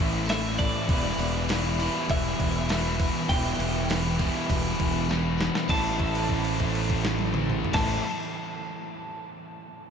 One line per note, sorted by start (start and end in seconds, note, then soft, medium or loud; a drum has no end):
0.00 0.68 A1 loud
0.00 0.28 A2 loud
0.00 0.89 A2 medium
0.00 0.89 E3 medium
0.00 0.29 E3 medium
0.00 0.29 A3 medium
0.00 0.88 A3 medium
0.00 0.88 C4 medium
0.00 0.91 E4 medium
0.00 0.29 C5 medium
0.00 crash medium
0.26 0.87 A2 medium
0.26 0.60 E3 medium
0.26 0.58 E5 loud
0.26 snare loud
0.26 tambourine loud
0.26 crash medium
0.30 0.57 A3 medium
0.57 0.91 E3 medium
0.57 0.87 A3 medium
0.57 2.10 D5 loud
0.57 kick medium
0.57 tambourine medium
0.57 crash medium
0.87 1.12 E1 loud
0.87 1.49 E2 medium
0.87 1.20 B2 loud
0.87 1.81 E3 loud
0.87 1.18 E3 loud
0.87 1.80 G3 loud
0.87 kick loud
0.87 tambourine soft
0.87 crash medium
0.91 1.80 B3 loud
0.91 1.79 E4 loud
1.17 1.87 E1 loud
1.17 1.50 B2 medium
1.17 1.52 E3 medium
1.17 tambourine medium
1.17 crash medium
1.48 2.08 E2 medium
1.48 1.82 B2 medium
1.48 1.80 E3 medium
1.48 snare loud
1.48 tambourine loud
1.48 crash medium
1.78 2.10 E3 medium
1.78 3.29 E3 medium
1.78 3.30 G3 medium
1.78 3.28 B3 medium
1.78 3.31 E4 medium
1.78 tambourine medium
1.78 crash medium
1.83 2.69 E2 medium
1.83 2.09 B2 medium
2.09 2.32 E1 medium
2.09 2.68 E2 medium
2.09 2.39 B2 loud
2.09 2.38 E3 loud
2.09 3.29 E5 loud
2.09 kick loud
2.09 tambourine medium
2.09 crash medium
2.39 3.08 E1 medium
2.39 2.69 B2 medium
2.39 2.70 E3 medium
2.39 kick medium
2.39 tambourine soft
2.39 crash medium
2.69 3.27 E2 medium
2.69 3.00 B2 medium
2.69 2.99 E3 medium
2.69 snare loud
2.69 tambourine loud
2.69 crash medium
2.99 3.29 B2 medium
2.99 3.30 E3 medium
2.99 kick medium
2.99 tambourine medium
2.99 crash medium
3.28 3.52 E1 loud
3.28 3.88 E2 medium
3.28 3.60 B2 loud
3.28 4.18 E3 loud
3.28 3.57 E3 loud
3.28 4.18 G3 medium
3.28 4.19 B3 loud
3.28 4.18 E4 loud
3.28 5.36 G5 loud
3.28 kick loud
3.28 tambourine soft
3.28 crash loud
3.59 4.28 E1 loud
3.59 3.89 B2 medium
3.59 3.90 E3 medium
3.59 tambourine medium
3.59 crash medium
3.88 4.47 E2 medium
3.88 4.19 B2 medium
3.88 4.16 E3 medium
3.88 snare loud
3.88 tambourine loud
3.88 crash medium
4.18 4.48 B2 medium
4.18 4.49 E3 medium
4.18 5.68 E3 medium
4.18 5.68 G3 medium
4.18 5.68 B3 medium
4.18 5.68 E4 medium
4.18 kick medium
4.18 tambourine medium
4.18 crash medium
4.23 5.08 E2 medium
4.48 4.73 E1 medium
4.48 5.07 E2 medium
4.48 4.80 B2 loud
4.48 4.78 E3 loud
4.48 kick loud
4.48 tambourine medium
4.48 crash medium
4.79 5.48 E1 medium
4.79 5.08 B2 medium
4.79 5.09 E3 medium
4.79 kick medium
4.79 tambourine soft
4.79 crash medium
5.08 5.67 E2 medium
5.08 5.39 B2 medium
5.08 5.37 E3 medium
5.08 snare medium
5.08 tambourine loud
5.38 5.67 B2 medium
5.38 5.67 E3 medium
5.38 snare loud
5.38 tambourine medium
5.55 snare loud
5.67 7.62 A1 loud
5.67 7.72 A2 loud
5.67 7.73 A2 loud
5.67 7.74 E3 medium
5.67 7.75 E3 loud
5.67 7.75 A3 loud
5.67 7.63 A5 medium
5.67 kick loud
5.67 crash medium
5.67 tambourine medium
5.71 7.77 A3 loud
5.71 7.76 C4 loud
5.71 7.77 E4 loud
6.00 kick medium
6.00 crash soft
6.15 crash medium
6.30 kick medium
6.30 crash medium
6.45 crash soft
6.60 kick medium
6.60 crash medium
6.75 crash medium
6.90 kick medium
6.90 crash medium
7.05 snare loud
7.19 high tom loud
7.34 mid tom loud
7.50 mid tom loud
7.65 floor tom loud
7.72 7.99 A1 medium
7.72 8.00 A2 medium
7.72 8.01 E3 loud
7.72 8.02 A3 loud
7.72 7.99 A5 medium
7.72 kick loud
7.72 snare loud
7.72 crash loud
7.76 8.02 A3 loud
7.76 8.02 C4 loud
7.76 8.02 E4 loud